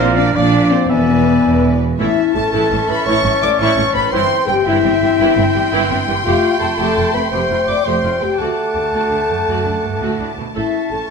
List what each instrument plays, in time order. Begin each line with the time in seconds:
Already playing: double bass section A#1, cello section A#2, oboe A#4, clarinet D5, flute F5
0.00 french horn section C4, viola section C4, violin section C5
0.17 french horn section D4, viola section D4, violin section D5
0.34 double bass section A#1, cello section A#2, french horn section D4, viola section D4, clarinet D5, violin section D5, oboe D5, flute F5
0.70 french horn section C4, viola section C4, violin section C5
0.89 double bass section E1, cello section E2, french horn section B3, viola section B3, violin section B4, clarinet D5, oboe E5, flute G#5
1.44 double bass section E1, cello section E2
1.98 double bass section A1, cello section A2, viola section E3 E4, clarinet C#4, french horn section E4, violin section E5 C#6, flute E5, oboe A5
2.35 double bass section A1, cello section A2, viola section E3 A3, french horn section A4, violin section A5, flute A5
2.52 double bass section A1, cello section A2, viola section E3 E4, french horn section A4, violin section A5, flute A5
2.70 double bass section A1, cello section A2, viola section E3 C#4
2.88 double bass section A1, cello section A2, viola section E3 A3, french horn section B4, violin section B5, flute B5
3.06 double bass section A1, cello section A2, viola section E3 E4, french horn section C#5, flute C#6, violin section C#6
3.24 double bass section A1, cello section A2, viola section E3 C#4
3.41 double bass section A1, cello section A2, viola section E3 A3, french horn section D5, flute D6, violin section D6
3.59 double bass section A1, cello section A2, viola section E3 E4, french horn section C#5, violin section C#6, flute C#6
3.76 double bass section A1, cello section A2, viola section E3 C#4
3.94 double bass section A1, cello section A2, viola section E3 A3, french horn section B4, violin section B5, flute B5
4.12 double bass section G1, cello section G2, viola section E3 E4, clarinet C4, french horn section C5, oboe G5, violin section G5 C6, flute C6
4.47 double bass section G1, cello section G2, viola section E3 G3, french horn section G4, violin section G5, flute G5
4.65 double bass section G1, cello section G2, viola section E3 E4, french horn section E4, violin section E5, flute E5
4.83 double bass section G1, cello section G2, viola section E3 C4
5.01 double bass section G1, cello section G2, viola section E3 G3
5.18 double bass section G1, cello section G2, viola section E3 E4
5.36 double bass section G1, cello section G2, viola section E3 C4
5.54 double bass section G1, cello section G2, viola section E3 G3
5.72 double bass section G1, cello section G2, viola section E3 E4
5.90 double bass section G1, cello section G2, viola section E3 C4
6.07 double bass section G1, cello section G2, viola section E3 G3
6.24 double bass section F1, cello section F2, clarinet A3, viola section A3 G4, french horn section F4, flute F5, violin section F5, oboe G5
6.59 double bass section F1, cello section F2, viola section A3 C4, french horn section A4, flute A5, violin section A5
6.77 double bass section F1, cello section F2, clarinet A3, viola section A3 G4, french horn section A4, oboe G5, flute A5, violin section A5
6.96 double bass section F1, cello section F2, viola section A3 F4
7.13 double bass section F1, cello section F2, viola section A3 C4, french horn section B4, violin section B5, flute B5
7.30 double bass section F1, cello section F2, clarinet A3, viola section A3 G4, french horn section C5, oboe G5, flute C6, violin section C6
7.49 double bass section F1, cello section F2, viola section A3 F4
7.66 double bass section F1, cello section F2, viola section A3 C4, french horn section D5, flute D6, violin section D6
7.84 double bass section F1, cello section F2, clarinet A3, viola section A3 G4, french horn section C5, oboe G5, flute C6, violin section C6
8.03 double bass section F1, cello section F2, viola section A3 F4
8.21 double bass section F1, cello section F2, viola section A3 C4, french horn section G4, violin section G5, flute G5
8.38 double bass section D2, cello section D2, clarinet A3, viola section A3 F#4, french horn section A4, oboe F#5, violin section A5 D6, flute A5
8.75 double bass section D2, cello section D2, viola section A3
8.93 double bass section D2, cello section D2, viola section A3 F#4
9.11 double bass section D2, viola section A3 D4
9.29 double bass section D2, cello section F#2, viola section A3
9.47 double bass section D2, cello section F#2, viola section A3 F#4
9.65 double bass section D2, viola section A3 D4
9.83 double bass section D2, cello section G2, viola section A3
10.01 double bass section D2, cello section A2, viola section A3 F#4
10.19 double bass section D2, viola section A3 D4
10.37 double bass section D2, cello section B2, viola section A3
10.55 double bass section A1, cello section A2, viola section A3 A4, clarinet C#4, french horn section E4, violin section E5 C#6, flute E5, oboe A5
10.91 double bass section A1, cello section A2, viola section A3 C#4, french horn section A4, violin section A5, flute A5